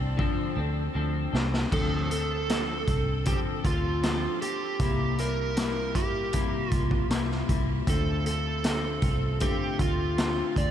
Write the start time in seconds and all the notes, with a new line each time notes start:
Already playing: C2 C4 D4 A4
0.17 D3 F3 C4 D4 A4, kick
0.56 D2 C4 D4 A4
0.94 D2 F3 C4 D4 A4
1.33 C2 C4 D4 A4, snare
1.54 snare
1.72 D2 D3 F3 C4 D4 A4, kick, crash
2.10 C4 D4 A4, closed hi-hat
2.48 F3 C4 D4 A4, snare, closed hi-hat
2.87 C2 C4 D4 A4, kick, closed hi-hat
3.25 D3 F3 C4 D4 G4 A4, kick, closed hi-hat
3.64 D2 C4 D4 F4 A4, kick, closed hi-hat
4.02 F3 C4 D4 A4, snare, closed hi-hat
4.40 C4 D4 G4 A4, closed hi-hat
4.79 C2 C3 G3 A#3 E4, kick, closed hi-hat
5.18 G3 A#3 E4 A#4, closed hi-hat
5.56 C3 G3 A#3 E4, snare, closed hi-hat
5.95 A#1 G3 A#3 E4 G4, kick, closed hi-hat
6.33 C3 G3 A#3 E4, kick, closed hi-hat
6.71 C2 G3 A#3 E4 F4, kick, closed hi-hat
6.91 kick
7.10 C2 C3 G3 A#3 E4, snare, closed hi-hat
7.31 snare
7.48 C2 G3 A#3 E4, kick, closed hi-hat
7.87 D2 D3 A3 C4 F4 A4, kick, closed hi-hat
8.25 A3 C4 F4 A4, closed hi-hat
8.64 D3 A3 C4 F4, snare, closed hi-hat
9.02 C2 A3 C4 F4, kick, closed hi-hat
9.40 D3 A3 C4 F4 G4, kick, closed hi-hat
9.79 D2 A3 C4 F4, kick, closed hi-hat
10.18 D3 A3 C4 F4, snare, closed hi-hat
10.56 D2 A3 C4 F4 D5, kick, closed hi-hat